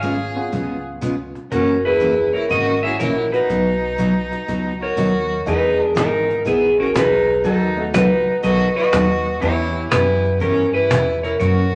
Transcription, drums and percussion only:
0.04 cajon bass, cajon slap
0.53 cajon bass, cajon slap
1.02 cajon bass, cajon slap
1.35 cajon slap
1.52 cajon bass, cajon slap
2.01 cajon bass, cajon slap
2.34 cajon slap
2.51 cajon bass, cajon slap
3.00 cajon bass, cajon slap
3.33 cajon slap
3.50 cajon bass, cajon slap
3.99 cajon bass, cajon slap
4.32 cajon slap
4.48 cajon bass, cajon slap
4.98 cajon bass, cajon slap
5.47 cajon bass, cajon slap
5.97 cajon bass, cajon slap
6.30 cajon slap
6.46 cajon bass, cajon slap
6.95 cajon bass, cajon slap
7.45 cajon bass, cajon slap
7.94 cajon bass, cajon slap
8.43 cajon bass, cajon slap
8.77 cajon slap
8.93 cajon bass, cajon slap
9.26 cajon slap
9.42 cajon bass, cajon slap
9.92 cajon bass, cajon slap
10.25 cajon slap
10.41 cajon bass, cajon slap
10.91 cajon bass, cajon slap
11.24 cajon slap
11.40 cajon bass, cajon slap

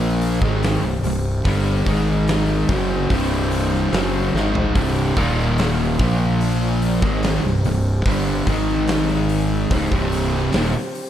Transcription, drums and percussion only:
0.21 open hi-hat
0.42 kick, snare
0.63 snare, open hi-hat
1.04 open hi-hat
1.45 kick, open hi-hat
1.86 kick, open hi-hat
2.28 snare, open hi-hat
2.69 kick, open hi-hat
3.10 kick, open hi-hat
3.52 open hi-hat
3.74 snare
3.93 snare, open hi-hat
4.36 snare
4.55 floor tom
4.75 kick, open hi-hat
5.17 kick, open hi-hat
5.39 snare
5.58 snare, open hi-hat
5.99 kick, open hi-hat
6.41 open hi-hat
6.82 open hi-hat
7.02 kick, snare
7.23 snare, open hi-hat
7.64 open hi-hat
8.06 kick, open hi-hat
8.47 kick, open hi-hat
8.69 snare
8.87 snare, open hi-hat
9.29 open hi-hat
9.71 kick, open hi-hat
9.92 kick
10.12 open hi-hat
10.35 snare
10.52 snare, open hi-hat
10.95 open hi-hat

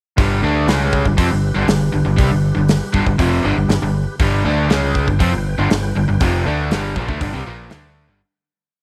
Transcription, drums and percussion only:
0.18 kick, open hi-hat
0.68 snare, open hi-hat
0.93 kick
1.05 kick
1.18 kick, open hi-hat
1.68 snare, open hi-hat
2.19 kick, open hi-hat
2.69 snare, open hi-hat
2.94 kick
3.07 kick
3.19 kick, open hi-hat
3.69 snare, open hi-hat
4.20 kick, open hi-hat
4.70 snare, open hi-hat
4.95 kick
5.08 kick
5.20 kick, open hi-hat
5.71 snare, open hi-hat
6.20 kick, open hi-hat
6.71 snare, open hi-hat
6.96 kick
7.09 kick
7.21 kick, open hi-hat
7.70 snare, open hi-hat

